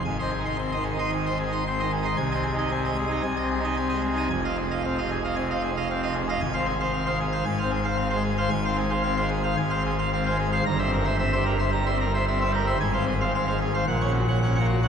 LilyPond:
<<
  \new Staff \with { instrumentName = "Pipe organ" } { \time 4/4 \key aes \major \tempo 4 = 113 << { aes''16 <ees'' c'''>16 aes'16 <ees'' c'''>16 c'''16 <ees'' c'''>16 aes'16 <ees'' c'''>16 aes''16 <ees'' c'''>16 aes'16 <ees'' c'''>16 c'''16 <ees'' c'''>16 aes'16 <ees'' c'''>16 | aes''16 <ees'' aes''>16 aes'16 <ees'' aes''>16 aes''16 <ees'' aes''>16 aes'16 <ees'' aes''>16 aes''16 <ees'' aes''>16 aes'16 <ees'' aes''>16 aes''16 <ees'' aes''>16 aes'16 <ees'' aes''>16 | aes''16 <ees'' f''>16 aes'16 <ees'' f''>16 f''16 <ees'' f''>16 aes'16 <ees'' f''>16 aes''16 <ees'' f''>16 aes'16 <ees'' f''>16 f''16 <ees'' f''>16 aes'16 <ees'' f''>16 | aes''16 <c'' f''>16 aes'16 <c'' f''>16 f''16 <c'' f''>16 aes'16 <c'' f''>16 aes''16 <c'' f''>16 aes'16 <c'' f''>16 f''16 <c'' f''>16 aes'16 <c'' f''>16 |
\key f \minor aes''16 <c'' f''>16 aes'16 <c'' f''>16 f''16 <c'' f''>16 aes'16 <c'' f''>16 aes''16 <c'' f''>16 aes'16 <c'' f''>16 f''16 <c'' f''>16 aes'16 <c'' f''>16 | bes''16 <c'' e''>16 bes'16 <c'' e''>16 e''16 <c'' e''>16 bes'16 <c'' e''>16 bes''16 <c'' e''>16 bes'16 <c'' e''>16 e''16 <c'' e''>16 bes'16 <c'' e''>16 | aes''16 <c'' f''>16 aes'16 <c'' f''>16 f''16 <c'' f''>16 aes'16 <c'' f''>16 ges''16 <des'' ges''>16 ges'16 <des'' ges''>16 ges''16 <des'' ges''>16 ges'16 <des'' ges''>16 | } \\ { \tuplet 3/2 { aes,8 c'8 ees'8 c'8 ees8 ees'8 ees8 c'8 ees'8 c'8 ees8 ees'8 } | \tuplet 3/2 { c8 c'8 ees'8 c'8 aes8 ees'8 c8 c'8 ees'8 c'8 aes8 ees'8 } | \tuplet 3/2 { f,8 c'8 r8 c'8 c8 r8 c8 c'8 r8 c'8 c8 r8 } | \tuplet 3/2 { aes,8 c'8 r8 c'8 aes8 r8 aes,8 c'8 r8 c'8 aes8 r8 } |
\tuplet 3/2 { aes,8 c'8 r8 c'8 aes8 r8 aes,8 c'8 r8 c'8 aes8 r8 } | \tuplet 3/2 { g,8 c'8 r8 c'8 g8 r8 g8 c'8 r8 c'8 g8 r8 } | \tuplet 3/2 { aes,8 c'8 r8 c'8 aes8 r8 bes,8 des'8 r8 des'8 bes8 r8 } | } >> }
  \new Staff \with { instrumentName = "Pipe organ" } { \clef bass \time 4/4 \key aes \major aes,,1 | c,2 c,2 | f,,1 | aes,,2 aes,,2 |
\key f \minor aes,,2 aes,,2 | g,,1 | aes,,2 bes,,2 | }
>>